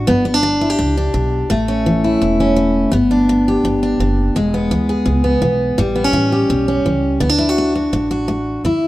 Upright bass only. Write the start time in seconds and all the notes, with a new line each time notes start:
0.08 G1
0.80 C#2
1.14 B1
1.50 A1
2.22 E1
2.93 G1
3.64 G1
3.99 F#1
4.35 E1
4.71 D2
5.06 C#2
5.42 B1
5.78 A1
6.13 A1
6.50 B1
6.85 C#2
7.21 D2
7.92 A1
8.64 D2